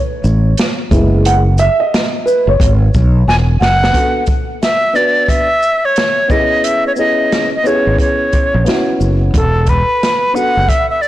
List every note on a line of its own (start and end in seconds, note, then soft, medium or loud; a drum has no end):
0.00 0.76 C#5 medium
0.24 0.53 A1 medium
0.24 shaker soft
0.57 snare loud
0.57 closed hi-hat medium
0.91 1.67 F#1 loud
0.91 1.40 G#3 medium
0.91 1.40 B3 soft
0.91 1.40 E4 medium
0.91 kick loud
0.91 closed hi-hat medium
0.91 shaker soft
1.25 1.34 F#5 loud
1.25 closed hi-hat medium
1.58 1.81 E5 loud
1.58 closed hi-hat soft
1.58 shaker soft
1.80 2.27 D#5 medium
1.94 snare loud
1.94 closed hi-hat medium
2.26 2.48 B4 medium
2.26 shaker medium
2.47 2.58 F#1 medium
2.47 3.45 C#5 medium
2.60 2.88 G#1 loud
2.60 kick medium
2.60 closed hi-hat medium
2.94 3.23 B1 medium
2.94 kick medium
2.94 shaker soft
3.28 3.56 E1 medium
3.28 3.36 G#5 loud
3.28 snare medium
3.61 3.89 F#1 medium
3.61 4.24 F#5 loud
3.61 snare loud
3.84 snare loud
3.92 4.20 B3 medium
3.92 4.21 D4 soft
3.92 4.21 F#4 soft
3.92 4.22 A4 medium
3.92 kick medium
3.92 closed hi-hat medium
4.26 kick medium
4.26 closed hi-hat soft
4.26 shaker soft
4.62 4.97 E5 loud
4.62 snare medium
4.62 closed hi-hat medium
4.93 5.46 B3 medium
4.93 5.46 D4 soft
4.93 5.47 F#4 medium
4.93 5.47 B4 medium
4.93 5.31 D5 medium
4.93 shaker soft
5.28 5.87 E5 loud
5.28 kick medium
5.28 closed hi-hat medium
5.62 shaker soft
5.85 6.33 C#5 medium
5.96 snare medium
5.96 closed hi-hat medium
6.28 6.87 B3 medium
6.28 6.88 C#4 medium
6.28 6.89 E4 medium
6.28 6.89 G#4 medium
6.28 6.66 D#5 medium
6.28 kick loud
6.28 shaker soft
6.64 6.86 E5 medium
6.64 closed hi-hat medium
6.87 6.92 C#5 medium
6.96 7.48 B3 medium
6.96 7.49 C#4 medium
6.96 7.49 E4 medium
6.96 7.50 G#4 medium
6.96 7.50 D#5 medium
6.96 shaker soft
7.32 snare medium
7.32 closed hi-hat medium
7.56 7.68 D#5 medium
7.63 8.61 B3 medium
7.63 8.61 C#4 medium
7.63 8.62 E4 medium
7.63 8.62 G#4 medium
7.63 8.00 C#5 medium
7.63 shaker medium
7.87 7.97 G#1 medium
7.98 8.97 C#5 medium
7.98 kick medium
7.98 closed hi-hat medium
8.33 kick medium
8.33 closed hi-hat soft
8.33 shaker soft
8.54 8.65 A#1 medium
8.64 9.33 B3 medium
8.64 9.34 C#4 medium
8.64 9.34 E4 medium
8.64 9.34 F#4 medium
8.64 snare medium
8.64 closed hi-hat medium
9.00 9.29 F#1 medium
9.00 shaker soft
9.34 9.81 E1 medium
9.34 9.71 A4 medium
9.34 kick loud
9.34 closed hi-hat medium
9.67 10.37 B4 medium
9.67 kick medium
9.67 closed hi-hat soft
9.67 shaker soft
10.03 snare medium
10.03 closed hi-hat medium
10.33 10.61 B3 medium
10.33 10.61 D4 soft
10.33 10.62 F#4 medium
10.33 10.62 A4 medium
10.33 10.70 F#5 loud
10.33 shaker medium
10.57 10.67 F#1 medium
10.69 10.90 E5 loud
10.69 kick medium
10.69 closed hi-hat medium
10.90 11.03 E5 medium
11.02 11.08 D5 medium
11.02 shaker soft